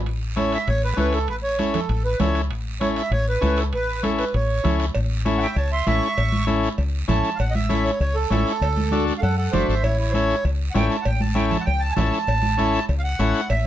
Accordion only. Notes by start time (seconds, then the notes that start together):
0.38 C#5
0.54 E5
0.68 C#5
0.84 B4
0.99 B4
1.14 A4
1.29 B4
1.43 C#5
1.75 A4
2.05 B4
2.19 C#5
2.81 C#5
2.97 E5
3.12 C#5
3.29 B4
3.59 A4
3.75 B4
4.05 A4
4.19 B4
4.35 C#5
5.38 E5 F#5
5.42 G5
5.56 C#5 A5
5.72 E5 C6
5.87 E5 C#6
7.10 A5
7.35 F5
7.40 F#5
7.51 D#5
7.55 E5
7.85 C#5
8.01 C#5
8.15 A4
9.18 A4 F5
9.23 F#5
9.37 A4 F#5
9.52 C5 E5
9.68 C5 E5
9.83 E4 C#5
9.98 E4 C#5
10.11 C5
10.15 C#5
10.71 F#5
10.76 G5
10.90 A5
11.02 F#5
11.06 G5
11.21 A5
11.35 G5
11.50 A5
11.60 F#5
11.65 G5
11.80 A5
11.91 G#5 A5
12.99 F5
13.04 F#5
13.50 E5